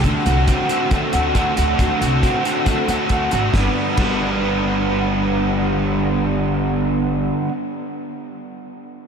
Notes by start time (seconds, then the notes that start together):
Already playing: A3 D4
0.04 D2 D3 A3 C4, kick, closed hi-hat
0.09 F#4
0.26 C2 C4 F#4, closed hi-hat
0.30 A3
0.48 C4, kick, closed hi-hat
0.69 D3 A3 C4 F#4, closed hi-hat
0.90 D3 A3 C4 F#4, kick, closed hi-hat
1.12 D2 A3 C4 F#4, closed hi-hat
1.34 D3 A3 C4 F#4, kick, closed hi-hat
1.56 D2 A3 C4 F#4, closed hi-hat
1.78 D2 D3 A3 C4 F#4, kick, closed hi-hat
1.98 C2 A3 C4 F#4, closed hi-hat
2.22 C4, kick, closed hi-hat
2.43 D3 A3 C4 F#4, closed hi-hat
2.64 D3 A3 C4 F#4, kick, closed hi-hat
2.87 D2 A3 C4 F#4, closed hi-hat
3.09 D3 A3 C4, kick, closed hi-hat
3.13 F#4
3.31 G#1 C4 F#4, closed hi-hat
3.36 A3
3.52 G1 G2 D3 G3 B3, kick, snare
3.56 D4 B4
3.96 G1 G2 D3 G3 B3, kick, crash
4.01 D4 B4